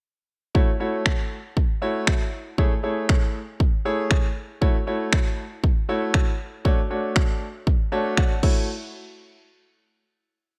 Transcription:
0.55 0.68 A3 medium
0.55 0.68 E4 medium
0.55 0.68 F#4 medium
0.55 0.69 C#5 medium
0.55 kick loud
0.80 1.34 A3 medium
0.80 1.34 E4 medium
0.80 1.34 F#4 medium
0.80 1.34 C#5 medium
1.06 finger snap loud
1.06 kick loud
1.57 kick loud
1.82 2.22 A3 medium
1.82 2.22 E4 medium
1.82 2.22 F#4 medium
1.82 2.22 C#5 medium
2.07 finger snap loud
2.07 kick loud
2.58 2.72 A3 medium
2.58 2.72 E4 medium
2.58 2.72 G#4 medium
2.58 2.72 C#5 medium
2.58 kick loud
2.83 3.37 A3 medium
2.83 3.37 E4 medium
2.83 3.38 G#4 medium
2.83 3.38 C#5 medium
3.09 finger snap loud
3.09 kick loud
3.60 kick loud
3.85 4.26 A3 medium
3.85 4.26 E4 medium
3.85 4.26 G#4 medium
3.85 4.26 C#5 medium
4.11 finger snap loud
4.11 kick loud
4.61 4.75 A3 medium
4.61 4.75 E4 medium
4.61 4.75 F#4 medium
4.61 4.75 C#5 medium
4.61 kick loud
4.87 5.41 A3 medium
4.87 5.41 E4 medium
4.87 5.41 F#4 medium
4.87 5.41 C#5 medium
5.13 finger snap loud
5.13 kick loud
5.64 kick loud
5.89 6.29 A3 medium
5.89 6.29 E4 medium
5.89 6.29 F#4 medium
5.89 6.29 C#5 medium
6.14 finger snap loud
6.14 kick loud
6.65 6.78 A3 medium
6.65 6.78 D4 medium
6.65 6.79 F#4 medium
6.65 6.79 C#5 medium
6.65 kick loud
6.90 7.44 A3 medium
6.90 7.44 D4 medium
6.90 7.44 F#4 medium
6.90 7.44 C#5 medium
7.16 finger snap loud
7.16 kick loud
7.67 kick loud
7.92 8.32 A3 medium
7.92 8.32 D4 medium
7.92 8.33 F#4 medium
7.92 8.33 C#5 medium
7.92 8.16 A5 medium
8.17 8.41 F#5 medium
8.17 finger snap loud
8.17 kick loud
8.43 8.67 A3 medium
8.43 8.67 E4 medium
8.43 8.67 F#4 medium
8.43 8.67 C#5 medium
8.43 kick loud
8.43 crash medium

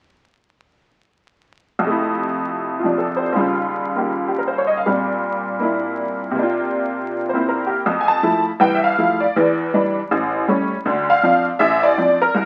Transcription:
1.79 3.32 F2 soft
1.83 2.82 C3 soft
1.83 3.36 A3 soft
1.91 3.38 E4 soft
2.79 3.34 C3 soft
2.79 3.05 F4 soft
2.85 3.35 F3 soft
2.85 3.36 D4 soft
2.98 3.26 A4 soft
3.17 3.43 C5 soft
3.33 4.84 D#2 soft
3.33 4.85 C#3 soft
3.33 4.85 G3 soft
3.38 4.87 F4 soft
3.96 4.84 D#3 soft
3.96 4.85 A#3 soft
3.96 4.27 G4 soft
4.28 4.40 G4 soft
4.38 4.51 A#4 soft
4.48 4.64 C5 soft
4.58 4.73 C#5 soft
4.67 4.79 D#5 soft
4.77 4.90 F5 soft
4.86 6.36 A#2 soft
4.86 6.36 G3 soft
4.86 6.36 C4 soft
4.86 5.60 D4 soft
5.60 6.34 A#3 soft
5.60 6.36 D4 soft
5.60 6.37 E4 soft
6.31 7.83 C3 soft
6.35 7.32 A#3 soft
6.35 7.87 D4 soft
6.43 7.89 F4 soft
7.29 7.85 A#3 soft
7.29 7.55 C5 soft
7.35 7.85 C4 soft
7.35 7.86 E4 soft
7.49 7.77 A#4 soft
7.67 7.93 G4 soft
7.86 8.18 F2 medium
8.01 8.09 G#5 medium
8.08 8.43 A5 medium
8.23 8.48 F3 soft
8.23 8.48 A3 soft
8.23 8.48 E4 medium
8.60 8.92 C2 medium
8.60 8.92 E3 medium
8.60 8.76 G5 medium
8.75 8.84 E5 medium
8.84 9.23 F5 medium
8.98 9.23 F3 soft
8.98 9.23 A3 soft
8.98 9.24 E4 soft
9.20 9.56 D5 medium
9.36 9.68 E2 medium
9.36 9.68 E3 medium
9.74 9.99 E3 soft
9.74 9.99 G3 soft
9.74 9.99 D4 medium
10.11 10.43 A1 medium
10.48 10.73 G3 soft
10.48 10.73 A3 soft
10.48 10.74 C#4 soft
10.85 11.18 D2 medium
10.85 11.18 D3 medium
11.10 11.45 F5 medium
11.23 11.48 F3 medium
11.23 11.49 C4 soft
11.23 11.49 D4 medium
11.59 11.93 A1 medium
11.59 11.82 E5 medium
11.83 12.19 D5 medium
11.98 12.23 F3 soft
11.98 12.23 C4 soft
11.98 12.24 D4 soft
12.22 12.45 A#4 medium
12.35 12.45 C2 medium

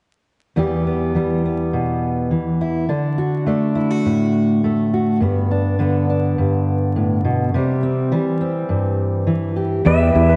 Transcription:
0.56 2.89 E2 medium
0.56 1.13 E3 soft
0.56 1.15 G3 soft
0.56 0.86 B3 soft
0.56 2.61 G4 soft
0.87 1.44 B3 soft
1.15 2.30 E3 soft
1.15 2.90 G3 soft
1.45 2.89 B3 soft
1.73 2.31 B2 medium
2.31 2.86 E3 soft
2.61 2.90 E4 soft
2.89 5.78 D3 medium
2.89 3.47 D4 soft
3.18 3.75 F#4 medium
3.46 4.63 A3 soft
3.46 5.18 D4 soft
3.75 3.91 E4 medium
3.91 4.92 F#4 soft
4.06 5.22 A2 soft
4.64 5.19 A3 medium
4.94 5.19 F#4 soft
5.20 6.37 G2 medium
5.20 5.79 B3 soft
5.51 6.08 D4 soft
5.79 7.54 D3 medium
5.79 7.51 B3 soft
6.10 7.51 D4 soft
6.38 7.51 G2 medium
6.96 7.24 A2 soft
7.25 7.54 B2 medium
7.54 8.12 C3 medium
7.54 8.11 G3 soft
7.83 8.39 C4 soft
8.11 9.26 E3 medium
8.11 9.85 G3 medium
8.41 9.82 C4 soft
8.69 9.82 G2 medium
9.27 9.82 E3 medium
9.56 9.82 G4 soft
9.85 10.36 E2 medium
9.85 10.10 E2 medium
9.85 10.36 E3 medium
9.85 10.36 G3 medium
9.85 10.36 B3 soft
9.85 10.13 G4 medium
9.85 10.28 B4 medium
9.85 10.36 E5 medium
10.01 10.36 G4 medium
10.14 10.36 E2 medium
10.14 10.36 E4 medium
10.14 10.36 G4 medium
10.29 10.36 B4 medium

